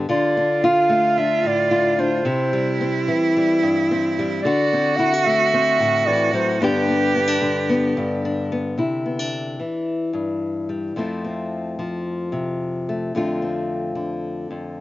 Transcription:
0.09 D3 F4 D5
0.37 D4
0.64 F4 F5
0.89 A3
1.18 D4 E5
1.44 A2 D5
1.71 F4
1.99 D4 C5
2.25 C3 C4 E4
2.53 G3
2.81 C4
3.08 E3
3.37 G3
3.63 G2
3.91 C4
4.19 G3
4.42 D3 F#4 D5
4.73 C4
4.97 E4 F#5
5.14 F#4
5.26 A3 E5
5.54 C4
5.79 A2
6.06 E3 D5
6.33 F#3 C5
6.61 G2 D3 B3 D4 G4 B4
6.88 B3
7.15 B3
7.27 D4
7.41 D3
7.69 B3
7.97 G2
8.25 D4
8.52 B3
8.78 C3 E4
9.06 B3
9.19 D4
9.60 E3
10.13 G2
10.69 G3
10.96 F2 F3 A3 C4 E4
11.25 C4
11.79 F3
12.32 C3
12.89 A3
13.15 F2 D3 A3 C4 F4
13.42 C4
13.95 D3
14.51 F2

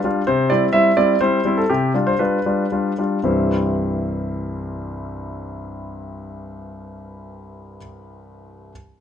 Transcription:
0.04 G3 D4 F4
0.27 C3 C5
0.50 G3 C4 E4 D5
0.73 G3 C4 E4 E5
0.97 G3 C4 E4 D5
1.21 G3 C4 E4 C5
1.45 G3 C4 E4
1.57 A4
1.70 C3 G4
1.94 G3 D4 F4
2.07 C5
2.19 G3 D4 F4 B4
2.46 G3 D4 F4
2.72 G3 D4 F4
2.98 G3 D4 F4
3.23 C2 G2 E3 G3 C4 E4 C5

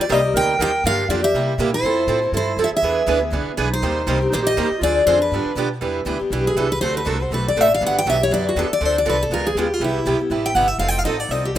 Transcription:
0.00 F4 D5
0.09 C2 D#3 G3 A#3 C4 D#4 G4 A#4 C5 D#5
0.24 C4 G4 A#4
0.34 D2 D#3 G3 A#3 C4 D#4 G4 A#4 C5 G5
0.59 D#2 D#3 G3 A#3 C4 D#4 G4 A#4 C5 G5
0.84 G2 D3 F3 A#3 D4 G4 A#4 F5
1.08 F2 D3 F3 A#3 D4 F4 G4 D5
1.23 A#3 D4 G4 E5
1.34 C3 G3 A#3 E4 G4
1.58 A#2 C3 G3 A#3 E4 G4
1.72 E4 C5
1.83 F2 F3 C4 E4 A4
2.07 A2 F3 C4 E4 A4
2.22 C4 E4 A4
2.32 G2 F3 C4 E4 A4
2.37 C5
2.56 F2 F3 C4 E4 A4
2.64 E5
2.71 G#4, muted upright bass stroke
2.77 E5
2.82 E2 E3 B3 D4 G#4 B4
3.06 D2 E3 B3 D4 G#4 B4
3.19 B3 D4 G#4
3.30 C#2 E3 B3 D4 G#4 B4
3.46 muted upright bass stroke
3.57 B1 E3 B3 D4 G#4 B4
3.70 D#4 C5
3.82 D#2 D#3 G3 A#3 C4 D#4 G4 A#4 C5
4.06 C2 D#3 G3 A#3 C4 D#4 G4 A#4 C5
4.21 C4 G4 A#4
4.30 A#1 D#3 G3 A#3 C4 D#4 G4 A#4 B4 C5
4.34 C5
4.43 G4 D#5
4.57 D#2 D#3 G3 A#3 C4 D#4 G4 A#4 C5
4.70 muted upright bass stroke
4.79 D2 D3 F3 C4 D4 F4
4.83 G#4 D5
5.04 F2 D3 F3 C4 D4 F4 C5
5.08 G#4
5.17 D4 G#4
5.22 C4 B4
5.31 G2 D3 F3 B3 D4 G4
5.45 muted upright bass stroke
5.55 B2 D3 F3 B3 D4 G4
5.81 E2 E3 G3 B3 D4 E4 G4 B4
6.05 D2 E3 G3 B3 D4 E4 G4 B4
6.19 B3 D4 G4, muted upright bass stroke
6.30 B1 E3 G3 B3 D4 E4 G4 B4
6.47 G#4
6.55 C2 E3 G3 B3 D4 E4 G4 A4 B4
6.72 B4
6.80 D2 D3 A3 C4 F#4 A4 C5
6.97 B4
7.05 C2 D3 A3 C4 F#4 A4 A#4
7.20 C4 F#4 A4 C5
7.31 B1 D3 A3 C4 F#4 A4 B4
7.48 D5
7.55 A1 D3 A3 C4 F#4 A4
7.61 E5
7.74 F5
7.81 G1 D3 F#3 B3 D4 G4
7.87 F#5
7.99 G5
8.06 B1 D3 F#3 B3 D4 G4 E5
8.20 B3 D4 G4 C#5
8.30 F#2 D3 F#3 B3 D4 G4 D5
8.49 F#4
8.56 E2 D3 F#3 B3 D4 G4 A4
8.70 D5, muted upright bass stroke
8.81 D2 D3 F3 C4 D4 A4
8.85 C5
8.98 D5
9.05 C2 D3 F3 C4 D4 A4
9.09 B4
9.20 C4 D4 A4
9.30 C#2 C#3 G#3 B3 F4 G#4 A#4
9.47 G#4
9.55 D#2 C#3 G#3 B3 F4 G4 G#4
9.74 F4
9.80 C2 C3 G3 B3 E4 G4
9.84 E4
10.06 B1 C3 G3 B3 E4 G4
10.19 B3 E4 G4
10.30 A1 C3 G3 B3 E4 G4
10.46 G5
10.55 G1 C3 G3 B3 E4 G4 F#5
10.68 E5
10.78 F1 F3 C4 D#4 A4 F5
10.88 G5
10.99 F5
11.04 A1 F3 C4 D#4 A4 D#5
11.19 C4 D#4 A4 D5
11.29 C2 F3 C4 D#4 A4 D#5
11.45 G4
11.55 D2 F3

